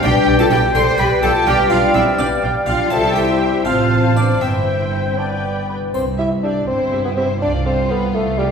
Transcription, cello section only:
0.03 0.39 G4 loud
0.40 0.52 A4 medium
0.51 0.75 G4 loud
0.75 0.99 C5 loud
0.99 1.23 B4 loud
1.22 1.30 A4 loud
1.47 1.70 G4 loud
1.70 1.94 F4 medium
1.95 2.03 E4 medium
2.19 2.27 D4 medium
2.67 2.90 F4 medium
2.92 3.17 A4 loud
3.17 3.66 G4 medium
3.66 4.15 F4 medium
4.16 4.24 D4 medium
4.42 5.17 E4 medium
5.94 6.56 C2 medium
6.67 7.29 G2 medium
7.41 8.02 C2 medium
8.15 8.51 C2 medium

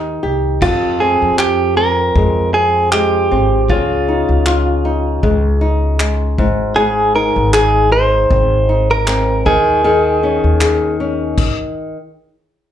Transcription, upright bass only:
0.00 0.19 D#2 medium
0.23 0.59 C2 medium
0.62 1.17 F2 medium
1.22 2.12 F2 medium
2.16 3.27 F2 medium
3.31 3.67 G#1 medium
3.69 4.25 C#2 medium
4.29 5.19 C#2 medium
5.23 6.35 C#2 loud
6.38 7.32 G#1 medium
7.36 8.26 G#1 medium
8.30 9.42 G#1 medium
9.46 10.40 D#2 medium
10.44 11.34 D#2 medium

